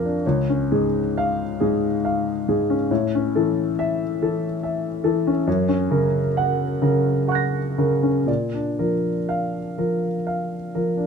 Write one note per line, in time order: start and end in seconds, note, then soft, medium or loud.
0.00 0.20 A#1 medium
0.00 0.25 F2 soft
0.00 0.26 A#4 soft
0.00 0.26 F5 medium
0.00 0.20 D6 soft
0.00 0.21 F6 soft
0.00 0.23 A#6 soft
0.05 0.25 D4 soft
0.26 2.88 C#2 medium
0.26 0.98 C#5 soft
0.50 0.84 C#4 soft
0.72 1.07 G#2 soft
0.72 1.43 G#4 medium
1.18 1.87 F5 medium
1.60 1.95 G#2 soft
1.60 2.30 G#4 soft
2.05 2.73 F5 soft
2.48 2.82 G#2 soft
2.48 2.91 G#4 soft
2.70 2.91 C#4 soft
2.91 5.43 A2 medium
2.91 3.60 C#5 soft
3.15 3.48 C#4 soft
3.35 3.69 E3 soft
3.35 4.02 A4 soft
3.79 4.45 E5 medium
4.22 4.54 E3 soft
4.22 4.88 A4 soft
4.63 5.31 E5 soft
5.04 5.38 E3 medium
5.04 5.47 A4 medium
5.27 5.48 C#4 soft
5.47 8.24 F#2 medium
5.47 6.19 C#5 medium
5.69 6.04 C#4 soft
5.91 6.27 C#3 soft
5.91 6.64 A#4 medium
6.37 7.11 F#5 medium
6.82 7.19 C#3 medium
6.82 7.58 A#4 medium
7.28 8.07 F#5 soft
7.28 8.23 C#6 soft
7.28 8.25 F#6 soft
7.35 8.27 A#6 soft
7.78 8.18 C#3 soft
7.78 8.28 A#4 medium
8.03 8.28 C#4 soft
8.26 11.07 A#2 soft
8.26 9.07 D5 soft
8.54 8.93 D4 soft
8.79 9.18 F3 soft
8.79 9.57 A#4 soft
9.29 10.06 F5 soft
9.78 10.16 F3 soft
9.78 10.55 A#4 soft
10.27 11.02 F5 soft
10.75 11.07 F3 soft
10.75 11.07 A#4 soft
10.97 11.07 D4 soft